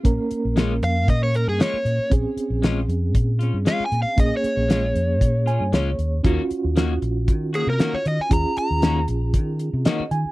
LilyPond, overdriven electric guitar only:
\new Staff \with { instrumentName = "Overdriven electric guitar" } { \time 4/4 \key bes \minor \tempo 4 = 116 r4. f''8 ees''16 des''16 bes'16 aes'16 des''4 | r2. \tuplet 3/2 { f''8 aes''8 f''8 } | \tuplet 3/2 { ees''8 des''4~ } des''2~ des''16 r8. | r2 r8 aes'16 bes'8 des''16 ees''16 aes''16 |
bes''8 bes''4 r2 r8 | }